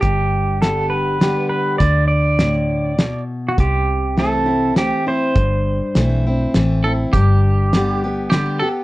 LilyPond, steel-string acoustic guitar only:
\new Staff \with { instrumentName = "Steel-string acoustic guitar" } { \time 3/4 \key g \mixolydian \tempo 4 = 101 << { r4 <d g b g'>4 <d g b g'>4 | r2. | r4 <e a c' e'>8 <c' e'>8 <e a c' e'>8 <c' e'>8 | r4 <e a c' e'>8 <c' e'>8 <e a c' e'>8 <c' e'>8 |
r4 <d g b g'>8 <b g'>8 <d g b g'>8 <b g'>8 | } \\ { g,2 r4 | d4 a,4 b,4 | c2 r4 | g,2 r4 |
g,2 r4 | } >> }